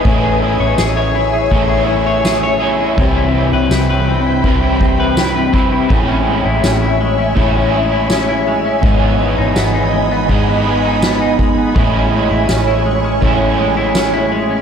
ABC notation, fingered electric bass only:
X:1
M:4/4
L:1/16
Q:1/4=82
K:Alyd
V:1 name="Fingered electric bass" clef=bass
A,,,3 A,,, A,,,4 A,,,8 | =C,,3 C,, C,,4 C,,8 | A,,,3 A,,, A,,,4 A,,,8 | G,,,3 G,,, G,,,4 G,,,8 |
A,,,3 A,,, A,,,4 A,,,8 |]